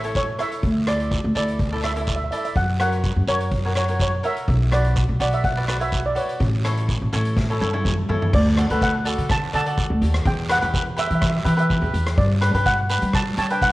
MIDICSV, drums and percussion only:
0, 0, Header, 1, 2, 480
1, 0, Start_track
1, 0, Key_signature, 2, "major"
1, 0, Tempo, 480769
1, 634, Time_signature, 4, 2, 24, 8
1, 13698, End_track
2, 0, Start_track
2, 0, Title_t, "Drums"
2, 35, Note_on_c, 9, 42, 57
2, 134, Note_off_c, 9, 42, 0
2, 147, Note_on_c, 9, 42, 56
2, 149, Note_on_c, 9, 36, 74
2, 150, Note_on_c, 9, 73, 64
2, 247, Note_off_c, 9, 42, 0
2, 249, Note_off_c, 9, 36, 0
2, 249, Note_off_c, 9, 73, 0
2, 388, Note_on_c, 9, 37, 65
2, 388, Note_on_c, 9, 42, 64
2, 488, Note_off_c, 9, 37, 0
2, 488, Note_off_c, 9, 42, 0
2, 515, Note_on_c, 9, 42, 56
2, 615, Note_off_c, 9, 42, 0
2, 628, Note_on_c, 9, 42, 50
2, 629, Note_on_c, 9, 36, 94
2, 634, Note_on_c, 9, 74, 63
2, 728, Note_off_c, 9, 42, 0
2, 729, Note_off_c, 9, 36, 0
2, 733, Note_off_c, 9, 74, 0
2, 869, Note_on_c, 9, 37, 80
2, 869, Note_on_c, 9, 42, 82
2, 969, Note_off_c, 9, 37, 0
2, 969, Note_off_c, 9, 42, 0
2, 997, Note_on_c, 9, 42, 52
2, 1097, Note_off_c, 9, 42, 0
2, 1110, Note_on_c, 9, 36, 73
2, 1111, Note_on_c, 9, 42, 51
2, 1115, Note_on_c, 9, 73, 60
2, 1210, Note_off_c, 9, 36, 0
2, 1211, Note_off_c, 9, 42, 0
2, 1215, Note_off_c, 9, 73, 0
2, 1350, Note_on_c, 9, 42, 68
2, 1356, Note_on_c, 9, 73, 66
2, 1450, Note_off_c, 9, 42, 0
2, 1456, Note_off_c, 9, 73, 0
2, 1479, Note_on_c, 9, 42, 60
2, 1579, Note_off_c, 9, 42, 0
2, 1589, Note_on_c, 9, 42, 53
2, 1590, Note_on_c, 9, 36, 97
2, 1595, Note_on_c, 9, 74, 60
2, 1688, Note_off_c, 9, 42, 0
2, 1690, Note_off_c, 9, 36, 0
2, 1695, Note_off_c, 9, 74, 0
2, 1833, Note_on_c, 9, 37, 75
2, 1833, Note_on_c, 9, 42, 77
2, 1833, Note_on_c, 9, 73, 66
2, 1933, Note_off_c, 9, 37, 0
2, 1933, Note_off_c, 9, 42, 0
2, 1933, Note_off_c, 9, 73, 0
2, 1962, Note_on_c, 9, 42, 61
2, 2062, Note_off_c, 9, 42, 0
2, 2066, Note_on_c, 9, 73, 74
2, 2072, Note_on_c, 9, 36, 76
2, 2072, Note_on_c, 9, 42, 62
2, 2166, Note_off_c, 9, 73, 0
2, 2171, Note_off_c, 9, 36, 0
2, 2172, Note_off_c, 9, 42, 0
2, 2315, Note_on_c, 9, 42, 71
2, 2414, Note_off_c, 9, 42, 0
2, 2444, Note_on_c, 9, 42, 59
2, 2544, Note_off_c, 9, 42, 0
2, 2552, Note_on_c, 9, 74, 71
2, 2553, Note_on_c, 9, 36, 94
2, 2553, Note_on_c, 9, 42, 55
2, 2652, Note_off_c, 9, 36, 0
2, 2652, Note_off_c, 9, 42, 0
2, 2652, Note_off_c, 9, 74, 0
2, 2792, Note_on_c, 9, 37, 85
2, 2792, Note_on_c, 9, 42, 83
2, 2892, Note_off_c, 9, 37, 0
2, 2892, Note_off_c, 9, 42, 0
2, 2919, Note_on_c, 9, 42, 55
2, 3019, Note_off_c, 9, 42, 0
2, 3032, Note_on_c, 9, 36, 79
2, 3033, Note_on_c, 9, 73, 64
2, 3034, Note_on_c, 9, 42, 62
2, 3132, Note_off_c, 9, 36, 0
2, 3132, Note_off_c, 9, 73, 0
2, 3133, Note_off_c, 9, 42, 0
2, 3271, Note_on_c, 9, 73, 67
2, 3273, Note_on_c, 9, 42, 73
2, 3371, Note_off_c, 9, 73, 0
2, 3373, Note_off_c, 9, 42, 0
2, 3401, Note_on_c, 9, 42, 58
2, 3501, Note_off_c, 9, 42, 0
2, 3509, Note_on_c, 9, 42, 55
2, 3512, Note_on_c, 9, 36, 95
2, 3514, Note_on_c, 9, 74, 67
2, 3609, Note_off_c, 9, 42, 0
2, 3611, Note_off_c, 9, 36, 0
2, 3614, Note_off_c, 9, 74, 0
2, 3751, Note_on_c, 9, 37, 78
2, 3751, Note_on_c, 9, 42, 79
2, 3758, Note_on_c, 9, 73, 69
2, 3850, Note_off_c, 9, 37, 0
2, 3850, Note_off_c, 9, 42, 0
2, 3858, Note_off_c, 9, 73, 0
2, 3877, Note_on_c, 9, 42, 56
2, 3977, Note_off_c, 9, 42, 0
2, 3988, Note_on_c, 9, 42, 58
2, 3991, Note_on_c, 9, 36, 83
2, 3998, Note_on_c, 9, 73, 74
2, 4088, Note_off_c, 9, 42, 0
2, 4090, Note_off_c, 9, 36, 0
2, 4098, Note_off_c, 9, 73, 0
2, 4230, Note_on_c, 9, 42, 67
2, 4330, Note_off_c, 9, 42, 0
2, 4359, Note_on_c, 9, 42, 54
2, 4459, Note_off_c, 9, 42, 0
2, 4473, Note_on_c, 9, 36, 95
2, 4475, Note_on_c, 9, 42, 46
2, 4477, Note_on_c, 9, 74, 65
2, 4573, Note_off_c, 9, 36, 0
2, 4575, Note_off_c, 9, 42, 0
2, 4577, Note_off_c, 9, 74, 0
2, 4714, Note_on_c, 9, 37, 85
2, 4714, Note_on_c, 9, 42, 75
2, 4814, Note_off_c, 9, 37, 0
2, 4814, Note_off_c, 9, 42, 0
2, 4839, Note_on_c, 9, 42, 54
2, 4939, Note_off_c, 9, 42, 0
2, 4948, Note_on_c, 9, 42, 54
2, 4951, Note_on_c, 9, 36, 77
2, 4952, Note_on_c, 9, 73, 69
2, 5048, Note_off_c, 9, 42, 0
2, 5051, Note_off_c, 9, 36, 0
2, 5051, Note_off_c, 9, 73, 0
2, 5191, Note_on_c, 9, 42, 71
2, 5199, Note_on_c, 9, 73, 66
2, 5291, Note_off_c, 9, 42, 0
2, 5299, Note_off_c, 9, 73, 0
2, 5318, Note_on_c, 9, 42, 56
2, 5418, Note_off_c, 9, 42, 0
2, 5431, Note_on_c, 9, 36, 97
2, 5431, Note_on_c, 9, 42, 52
2, 5437, Note_on_c, 9, 74, 69
2, 5530, Note_off_c, 9, 42, 0
2, 5531, Note_off_c, 9, 36, 0
2, 5537, Note_off_c, 9, 74, 0
2, 5672, Note_on_c, 9, 37, 82
2, 5672, Note_on_c, 9, 42, 75
2, 5677, Note_on_c, 9, 73, 72
2, 5772, Note_off_c, 9, 37, 0
2, 5772, Note_off_c, 9, 42, 0
2, 5777, Note_off_c, 9, 73, 0
2, 5801, Note_on_c, 9, 42, 58
2, 5901, Note_off_c, 9, 42, 0
2, 5911, Note_on_c, 9, 73, 68
2, 5913, Note_on_c, 9, 36, 77
2, 5915, Note_on_c, 9, 42, 63
2, 6011, Note_off_c, 9, 73, 0
2, 6013, Note_off_c, 9, 36, 0
2, 6015, Note_off_c, 9, 42, 0
2, 6150, Note_on_c, 9, 42, 78
2, 6250, Note_off_c, 9, 42, 0
2, 6280, Note_on_c, 9, 42, 58
2, 6380, Note_off_c, 9, 42, 0
2, 6390, Note_on_c, 9, 42, 54
2, 6392, Note_on_c, 9, 36, 93
2, 6399, Note_on_c, 9, 74, 70
2, 6490, Note_off_c, 9, 42, 0
2, 6492, Note_off_c, 9, 36, 0
2, 6499, Note_off_c, 9, 74, 0
2, 6637, Note_on_c, 9, 37, 88
2, 6637, Note_on_c, 9, 42, 78
2, 6737, Note_off_c, 9, 37, 0
2, 6737, Note_off_c, 9, 42, 0
2, 6761, Note_on_c, 9, 42, 54
2, 6861, Note_off_c, 9, 42, 0
2, 6874, Note_on_c, 9, 36, 76
2, 6875, Note_on_c, 9, 42, 63
2, 6878, Note_on_c, 9, 73, 63
2, 6974, Note_off_c, 9, 36, 0
2, 6975, Note_off_c, 9, 42, 0
2, 6978, Note_off_c, 9, 73, 0
2, 7114, Note_on_c, 9, 42, 73
2, 7121, Note_on_c, 9, 73, 69
2, 7214, Note_off_c, 9, 42, 0
2, 7221, Note_off_c, 9, 73, 0
2, 7241, Note_on_c, 9, 42, 64
2, 7340, Note_off_c, 9, 42, 0
2, 7353, Note_on_c, 9, 38, 49
2, 7356, Note_on_c, 9, 36, 101
2, 7360, Note_on_c, 9, 74, 67
2, 7453, Note_off_c, 9, 38, 0
2, 7456, Note_off_c, 9, 36, 0
2, 7460, Note_off_c, 9, 74, 0
2, 7600, Note_on_c, 9, 48, 66
2, 7608, Note_on_c, 9, 73, 67
2, 7700, Note_off_c, 9, 48, 0
2, 7708, Note_off_c, 9, 73, 0
2, 7727, Note_on_c, 9, 48, 59
2, 7827, Note_off_c, 9, 48, 0
2, 7838, Note_on_c, 9, 36, 86
2, 7839, Note_on_c, 9, 47, 69
2, 7848, Note_on_c, 9, 73, 71
2, 7938, Note_off_c, 9, 36, 0
2, 7939, Note_off_c, 9, 47, 0
2, 7947, Note_off_c, 9, 73, 0
2, 8082, Note_on_c, 9, 43, 75
2, 8182, Note_off_c, 9, 43, 0
2, 8208, Note_on_c, 9, 43, 76
2, 8308, Note_off_c, 9, 43, 0
2, 8320, Note_on_c, 9, 36, 105
2, 8321, Note_on_c, 9, 49, 97
2, 8327, Note_on_c, 9, 74, 69
2, 8420, Note_off_c, 9, 36, 0
2, 8421, Note_off_c, 9, 49, 0
2, 8427, Note_off_c, 9, 74, 0
2, 8559, Note_on_c, 9, 37, 84
2, 8559, Note_on_c, 9, 42, 80
2, 8659, Note_off_c, 9, 37, 0
2, 8659, Note_off_c, 9, 42, 0
2, 8688, Note_on_c, 9, 42, 58
2, 8788, Note_off_c, 9, 42, 0
2, 8801, Note_on_c, 9, 36, 88
2, 8802, Note_on_c, 9, 42, 60
2, 8808, Note_on_c, 9, 73, 68
2, 8901, Note_off_c, 9, 36, 0
2, 8902, Note_off_c, 9, 42, 0
2, 8907, Note_off_c, 9, 73, 0
2, 9039, Note_on_c, 9, 42, 78
2, 9047, Note_on_c, 9, 73, 67
2, 9139, Note_off_c, 9, 42, 0
2, 9147, Note_off_c, 9, 73, 0
2, 9170, Note_on_c, 9, 42, 71
2, 9269, Note_off_c, 9, 42, 0
2, 9280, Note_on_c, 9, 37, 79
2, 9280, Note_on_c, 9, 42, 63
2, 9281, Note_on_c, 9, 36, 116
2, 9284, Note_on_c, 9, 73, 69
2, 9284, Note_on_c, 9, 74, 66
2, 9380, Note_off_c, 9, 37, 0
2, 9380, Note_off_c, 9, 42, 0
2, 9381, Note_off_c, 9, 36, 0
2, 9384, Note_off_c, 9, 73, 0
2, 9384, Note_off_c, 9, 74, 0
2, 9522, Note_on_c, 9, 42, 83
2, 9621, Note_off_c, 9, 42, 0
2, 9646, Note_on_c, 9, 42, 73
2, 9746, Note_off_c, 9, 42, 0
2, 9759, Note_on_c, 9, 42, 66
2, 9760, Note_on_c, 9, 36, 89
2, 9761, Note_on_c, 9, 73, 63
2, 9859, Note_off_c, 9, 42, 0
2, 9860, Note_off_c, 9, 36, 0
2, 9861, Note_off_c, 9, 73, 0
2, 10000, Note_on_c, 9, 42, 84
2, 10100, Note_off_c, 9, 42, 0
2, 10126, Note_on_c, 9, 37, 91
2, 10126, Note_on_c, 9, 42, 70
2, 10226, Note_off_c, 9, 37, 0
2, 10226, Note_off_c, 9, 42, 0
2, 10237, Note_on_c, 9, 42, 64
2, 10239, Note_on_c, 9, 36, 101
2, 10245, Note_on_c, 9, 74, 64
2, 10337, Note_off_c, 9, 42, 0
2, 10339, Note_off_c, 9, 36, 0
2, 10345, Note_off_c, 9, 74, 0
2, 10477, Note_on_c, 9, 37, 96
2, 10477, Note_on_c, 9, 42, 98
2, 10577, Note_off_c, 9, 37, 0
2, 10577, Note_off_c, 9, 42, 0
2, 10606, Note_on_c, 9, 42, 64
2, 10706, Note_off_c, 9, 42, 0
2, 10720, Note_on_c, 9, 36, 84
2, 10721, Note_on_c, 9, 42, 66
2, 10730, Note_on_c, 9, 73, 68
2, 10819, Note_off_c, 9, 36, 0
2, 10821, Note_off_c, 9, 42, 0
2, 10830, Note_off_c, 9, 73, 0
2, 10959, Note_on_c, 9, 42, 86
2, 10966, Note_on_c, 9, 73, 70
2, 11058, Note_off_c, 9, 42, 0
2, 11066, Note_off_c, 9, 73, 0
2, 11088, Note_on_c, 9, 42, 67
2, 11187, Note_off_c, 9, 42, 0
2, 11199, Note_on_c, 9, 37, 83
2, 11199, Note_on_c, 9, 42, 61
2, 11200, Note_on_c, 9, 36, 105
2, 11201, Note_on_c, 9, 73, 69
2, 11201, Note_on_c, 9, 74, 68
2, 11298, Note_off_c, 9, 37, 0
2, 11298, Note_off_c, 9, 42, 0
2, 11300, Note_off_c, 9, 36, 0
2, 11301, Note_off_c, 9, 73, 0
2, 11301, Note_off_c, 9, 74, 0
2, 11441, Note_on_c, 9, 42, 94
2, 11541, Note_off_c, 9, 42, 0
2, 11569, Note_on_c, 9, 42, 62
2, 11669, Note_off_c, 9, 42, 0
2, 11680, Note_on_c, 9, 36, 86
2, 11681, Note_on_c, 9, 42, 66
2, 11683, Note_on_c, 9, 73, 76
2, 11780, Note_off_c, 9, 36, 0
2, 11781, Note_off_c, 9, 42, 0
2, 11783, Note_off_c, 9, 73, 0
2, 11921, Note_on_c, 9, 42, 84
2, 12021, Note_off_c, 9, 42, 0
2, 12046, Note_on_c, 9, 37, 84
2, 12046, Note_on_c, 9, 42, 68
2, 12146, Note_off_c, 9, 37, 0
2, 12146, Note_off_c, 9, 42, 0
2, 12156, Note_on_c, 9, 74, 72
2, 12157, Note_on_c, 9, 36, 110
2, 12158, Note_on_c, 9, 42, 54
2, 12256, Note_off_c, 9, 74, 0
2, 12257, Note_off_c, 9, 36, 0
2, 12258, Note_off_c, 9, 42, 0
2, 12398, Note_on_c, 9, 37, 89
2, 12398, Note_on_c, 9, 42, 81
2, 12497, Note_off_c, 9, 37, 0
2, 12497, Note_off_c, 9, 42, 0
2, 12528, Note_on_c, 9, 42, 64
2, 12628, Note_off_c, 9, 42, 0
2, 12637, Note_on_c, 9, 36, 88
2, 12637, Note_on_c, 9, 42, 63
2, 12639, Note_on_c, 9, 73, 65
2, 12736, Note_off_c, 9, 42, 0
2, 12737, Note_off_c, 9, 36, 0
2, 12739, Note_off_c, 9, 73, 0
2, 12874, Note_on_c, 9, 42, 79
2, 12884, Note_on_c, 9, 73, 76
2, 12973, Note_off_c, 9, 42, 0
2, 12984, Note_off_c, 9, 73, 0
2, 13000, Note_on_c, 9, 42, 62
2, 13100, Note_off_c, 9, 42, 0
2, 13113, Note_on_c, 9, 37, 85
2, 13113, Note_on_c, 9, 42, 61
2, 13115, Note_on_c, 9, 36, 99
2, 13126, Note_on_c, 9, 73, 76
2, 13126, Note_on_c, 9, 74, 72
2, 13213, Note_off_c, 9, 37, 0
2, 13213, Note_off_c, 9, 42, 0
2, 13215, Note_off_c, 9, 36, 0
2, 13226, Note_off_c, 9, 73, 0
2, 13226, Note_off_c, 9, 74, 0
2, 13353, Note_on_c, 9, 42, 91
2, 13453, Note_off_c, 9, 42, 0
2, 13481, Note_on_c, 9, 42, 64
2, 13581, Note_off_c, 9, 42, 0
2, 13595, Note_on_c, 9, 36, 91
2, 13595, Note_on_c, 9, 42, 68
2, 13602, Note_on_c, 9, 73, 73
2, 13695, Note_off_c, 9, 36, 0
2, 13695, Note_off_c, 9, 42, 0
2, 13698, Note_off_c, 9, 73, 0
2, 13698, End_track
0, 0, End_of_file